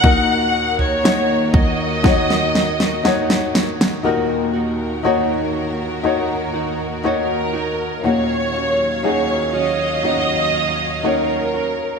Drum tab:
SD |----o---oooooooo|----------------|----------------|
FT |o--o--o---------|----------------|----------------|
BD |o-----o-o-------|----------------|----------------|